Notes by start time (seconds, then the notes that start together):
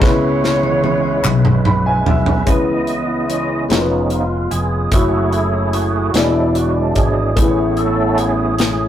0.00 C#2 C#3 G#3 B3 C#4 E4 G#4 B4 C#5, kick, snare
0.05 B4
0.44 snare
0.63 high tom
0.84 high tom
1.24 B1, clap, mid tom
1.45 mid tom
1.65 B5, mid tom
1.86 G#5
2.06 B1 E5, floor tom
2.26 floor tom
2.46 C#2 C#3 E3 G#3 B3 C#4 E4 B4 D#5, kick, closed hi-hat
2.87 B3, closed hi-hat
3.28 C#4, closed hi-hat
3.69 F1 F3 G#3 B3 C#4 D#4 F4 A#4, snare, closed hi-hat
3.79 B4
4.10 F4, closed hi-hat
4.51 F1 G#4, closed hi-hat
4.91 F#1 F#3 A3 E4 F#4 G#4 C#5, kick, closed hi-hat
5.33 E4, closed hi-hat
5.54 E4
5.73 F#4, closed hi-hat
6.11 E1 F#3 G#3 B3 D4, closed hi-hat
6.15 E3 B3 E4 G#4 D5, snare
6.55 F#4, closed hi-hat
6.95 G#1 G#4, kick, closed hi-hat
7.35 A1 A2 A3 B3 C#4 E4, kick, closed hi-hat
7.40 G#4 B4
7.48 C#5
7.77 A4, closed hi-hat
8.18 G#4, closed hi-hat
8.59 snare, closed hi-hat